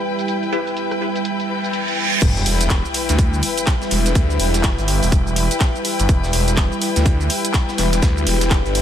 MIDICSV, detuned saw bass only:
0, 0, Header, 1, 2, 480
1, 0, Start_track
1, 0, Key_signature, 1, "minor"
1, 0, Tempo, 483871
1, 281, Time_signature, 4, 2, 24, 8
1, 8747, End_track
2, 0, Start_track
2, 0, Title_t, "Detuned saw bass"
2, 0, Program_c, 0, 39
2, 2201, Note_on_c, 0, 28, 97
2, 2425, Note_off_c, 0, 28, 0
2, 2440, Note_on_c, 0, 28, 96
2, 2803, Note_off_c, 0, 28, 0
2, 3066, Note_on_c, 0, 38, 97
2, 3385, Note_off_c, 0, 38, 0
2, 3881, Note_on_c, 0, 28, 102
2, 4105, Note_off_c, 0, 28, 0
2, 4121, Note_on_c, 0, 38, 99
2, 4346, Note_off_c, 0, 38, 0
2, 4360, Note_on_c, 0, 28, 97
2, 4723, Note_off_c, 0, 28, 0
2, 4746, Note_on_c, 0, 31, 101
2, 4963, Note_off_c, 0, 31, 0
2, 4986, Note_on_c, 0, 28, 97
2, 5443, Note_off_c, 0, 28, 0
2, 5946, Note_on_c, 0, 31, 95
2, 6025, Note_off_c, 0, 31, 0
2, 6041, Note_on_c, 0, 28, 97
2, 6265, Note_off_c, 0, 28, 0
2, 6280, Note_on_c, 0, 28, 99
2, 6643, Note_off_c, 0, 28, 0
2, 6906, Note_on_c, 0, 38, 98
2, 7225, Note_off_c, 0, 38, 0
2, 7721, Note_on_c, 0, 28, 99
2, 7945, Note_off_c, 0, 28, 0
2, 7961, Note_on_c, 0, 38, 97
2, 8185, Note_off_c, 0, 38, 0
2, 8201, Note_on_c, 0, 28, 100
2, 8563, Note_off_c, 0, 28, 0
2, 8587, Note_on_c, 0, 31, 96
2, 8747, Note_off_c, 0, 31, 0
2, 8747, End_track
0, 0, End_of_file